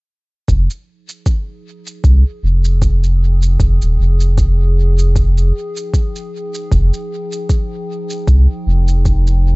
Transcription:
0.48 sub bass F1, ambient pad F3, kick, shaker
0.68 ambient pad D#4, shaker
0.83 ambient pad G#4
1.09 shaker
1.26 kick, shaker
1.87 shaker
2.04 sub bass C2, kick, shaker
2.31 ambient pad G5
2.43 sub bass F1
2.65 shaker
2.82 kick, shaker
3.04 shaker
3.43 shaker
3.60 sub bass F1, kick, shaker
3.82 sub bass D#1, shaker
3.99 sub bass F1
4.21 shaker
4.38 kick, shaker
4.99 shaker
5.16 kick, shaker
5.38 shaker
5.77 shaker
5.94 kick, shaker
6.16 shaker
6.55 shaker
6.71 sub bass F1, kick, shaker
6.94 shaker
7.33 shaker
7.50 kick, shaker
8.10 shaker
8.27 sub bass C2, kick, shaker
8.66 sub bass F1
8.88 shaker
9.05 kick, shaker
9.27 shaker

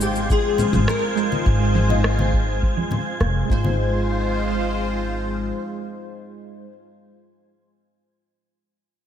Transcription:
Already playing: upright bass G#1, synth keys G#3 D#4 F4 C5, analog synth pad G#3 F4 C5, synth texture G#5 G#6, impact
0.01 nylon-string guitar G4, shaker
0.16 shaker
0.30 nylon-string guitar G#4, kick, shaker
0.58 high conga, low conga, shaker
0.73 upright bass G#1, low conga, shaker
0.88 nylon-string guitar A#4, cross-stick, shaker
1.16 synth keys G#3 D#4 F4 C5, shaker
1.32 high conga, shaker
1.46 upright bass G#1, kick, shaker
1.59 synth keys G#3 D#4 F4 C5
1.75 low conga, shaker
1.88 synth keys G#3 D#4 F4 D#5, low conga, shaker
2.04 cross-stick, shaker
2.18 synth keys G#3 D#4 F4 C5, high conga
2.33 kick, shaker
2.48 shaker
2.62 kick, shaker
2.77 low conga
2.91 high conga, low conga, shaker
3.07 shaker
3.20 upright bass F1, cross-stick
3.45 synth keys G#3 D#4
3.49 upright bass G#1, analog synth pad G#3 F4 C5, synth keys F4, nylon-string guitar C5, kick
3.54 synth keys C5
3.65 high conga

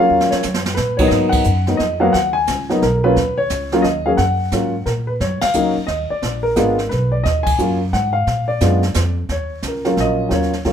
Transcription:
Already playing: upright piano F#3 A#3 F5
0.00 upright piano C#4 F4
0.10 upright bass D#2
0.20 snare
0.30 upright piano C#5, muted upright bass stroke, snare
0.43 upright bass F#2, snare, hi-hat pedal
0.54 snare
0.66 snare
0.75 upright bass A#2, upright piano B4, snare
0.97 upright piano F#3 A#3 B3 D#4 C#5, kick, crash
1.08 upright bass G#2, upright piano D#5, brush sweep, snare
1.29 upright piano F#5, kick, crash
1.44 upright bass F#2, hi-hat pedal
1.67 upright piano F#3 A#3 B3 D#4, snare
1.77 upright bass F2, upright piano D#5, kick, snare
2.00 upright piano F#3 A#3 B3 F#4 F5
2.13 upright bass D#2, upright piano F#5, brush sweep, kick, snare
2.33 upright piano G#5
2.47 upright bass C#2, kick, snare, hi-hat pedal
2.70 upright piano F#3 A#3 B3 D#4, snare
2.82 upright bass B1, upright piano A#4, kick, snare
3.04 upright piano F#3 A#3 C#4 F4 B4
3.16 upright bass D#2, brush sweep, kick, snare
3.38 upright piano C#5
3.50 upright bass C#2, kick, snare, hi-hat pedal
3.72 upright piano F#3 A#3 C#4 F4, snare
3.82 upright bass D#2, upright piano D#5, kick, snare
4.06 upright piano F#3 A#3 C#4 G#4 F5
4.17 upright bass F#2, upright piano F#5, brush sweep, kick, snare
4.52 upright bass G#2, upright piano F#3 A#3 C#4 F4, kick, snare, hi-hat pedal
4.86 upright bass A#2, upright piano A#4, kick, snare
5.07 upright piano B4
5.20 upright bass F#2, upright piano C#5, brush sweep, kick, snare
5.41 upright piano F5, muted upright bass stroke, snare, ride
5.53 upright bass C#2, upright piano F#3 A#3 C#4 D#4, hi-hat pedal
5.77 muted upright bass stroke
5.87 upright bass D#2, upright piano D#5, kick, snare
6.10 upright piano D5, muted upright bass stroke
6.22 upright bass A#1, brush sweep, kick, snare
6.43 upright piano A#4
6.56 upright bass G#1, upright piano G#3 B3 D4 F4, kick, snare, hi-hat pedal
6.78 snare
6.89 upright bass B1, upright piano B4, kick, snare
7.12 upright piano D5
7.24 upright bass D#2, upright piano D#5, brush sweep, kick, snare
7.43 upright piano G#5, kick, crash
7.58 upright bass F#2, upright piano F#3 A#3 C#4 F4, hi-hat pedal
7.93 upright bass G#2, upright piano F#5, kick, snare
8.13 upright piano F5
8.27 upright bass A#2, brush sweep, kick, snare
8.48 upright piano D5
8.60 upright bass F#2, upright piano G#3 B3 D4 F4, kick, snare, hi-hat pedal
8.83 snare
8.94 upright bass F2, kick, snare, hi-hat pedal
9.29 upright bass D#2, upright piano C#5, brush sweep, kick, snare
9.62 upright bass C#2, kick, snare, hi-hat pedal
9.68 upright piano A#4
9.85 upright piano F#3 A#3 C#4 F4, snare
9.97 upright bass A#1, upright piano D#5, kick, snare
10.29 upright bass D#2, upright piano F#3 A#3 C#4 F4 C#5, brush sweep, kick, snare
10.42 snare
10.53 snare
10.65 upright bass C#2, upright piano F#3 A#3 C#4 F4, kick, snare

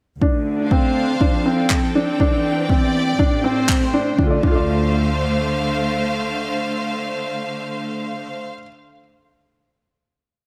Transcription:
0.22 double bass section D2, string section D3, felt piano D4, kick
0.54 string section D4
0.67 string section C5 F5
0.71 felt piano C4, kick
1.21 double bass section F2, string section F3, felt piano D4, kick
1.44 string section C4, felt piano C4
1.50 string section G5
1.58 string section A4
1.70 kick, clap
1.95 felt piano D4
2.20 double bass section E2, string section E3, felt piano D4, kick
2.65 string section D5
2.69 felt piano C4, kick
3.19 double bass section A1, string section A2, felt piano D4, kick
3.32 string section A3
3.44 felt piano C4, string section C5
3.69 kick, clap
3.94 felt piano D4
4.18 double bass section D2, string section D3, felt piano D4, kick
4.22 string section A3, felt piano F4
4.27 felt piano A4
4.31 string section C5, felt piano D5
4.41 double bass section D2, felt piano D4, string section F5, kick
4.47 felt piano F4 A4
4.55 felt piano D5

